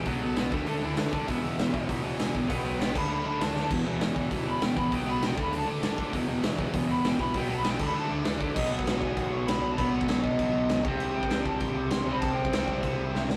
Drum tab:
CC |----------------|----------------|------x---------|x---------------|
HH |o---o---o---o---|o---o---o---o---|o---o-------o---|----o---o---o---|
SD |----o-------o---|----o-------o---|----o-------o-o-|----o-------o---|
BD |o-----o-------o-|o-----o-o-----o-|o-----o---------|o-----o-o-----o-|

CC |----------------|----------------|------x---------|x---x---x---x---|
HH |o---o---o---o---|o---o---o---o---|o---o-------o---|----------------|
SD |----o-------o---|----o-------o---|----o-------o---|----o-------o---|
BD |o-----o-------o-|o-----o-o-----o-|o-----o-------o-|o--o--o-o-------|

CC |x---x---x---x---|x---x---x---x---|x---x---x-------|
HH |----------------|----------------|----------------|
SD |----o-------o---|----o-------o---|----o-------o-o-|
BD |o--o--o-o-----o-|---o--o-o-------|o--o--o-o-------|